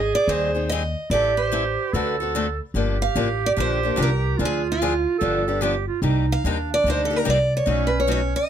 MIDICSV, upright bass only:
0, 0, Header, 1, 2, 480
1, 0, Start_track
1, 0, Tempo, 411241
1, 1282, Time_signature, 4, 2, 24, 8
1, 9913, End_track
2, 0, Start_track
2, 0, Title_t, "Upright bass"
2, 0, Program_c, 0, 32
2, 0, Note_on_c, 0, 32, 80
2, 123, Note_off_c, 0, 32, 0
2, 321, Note_on_c, 0, 39, 81
2, 1089, Note_off_c, 0, 39, 0
2, 1283, Note_on_c, 0, 33, 81
2, 2050, Note_off_c, 0, 33, 0
2, 2257, Note_on_c, 0, 38, 82
2, 3019, Note_off_c, 0, 38, 0
2, 3199, Note_on_c, 0, 31, 72
2, 3584, Note_off_c, 0, 31, 0
2, 3683, Note_on_c, 0, 33, 78
2, 4090, Note_off_c, 0, 33, 0
2, 4166, Note_on_c, 0, 34, 74
2, 4572, Note_off_c, 0, 34, 0
2, 4645, Note_on_c, 0, 36, 81
2, 5052, Note_off_c, 0, 36, 0
2, 5122, Note_on_c, 0, 38, 80
2, 5890, Note_off_c, 0, 38, 0
2, 6086, Note_on_c, 0, 31, 83
2, 6853, Note_off_c, 0, 31, 0
2, 7024, Note_on_c, 0, 36, 84
2, 7415, Note_off_c, 0, 36, 0
2, 7519, Note_on_c, 0, 39, 87
2, 7928, Note_off_c, 0, 39, 0
2, 7985, Note_on_c, 0, 38, 83
2, 8400, Note_off_c, 0, 38, 0
2, 8485, Note_on_c, 0, 36, 76
2, 8892, Note_off_c, 0, 36, 0
2, 8949, Note_on_c, 0, 35, 84
2, 9723, Note_off_c, 0, 35, 0
2, 9913, End_track
0, 0, End_of_file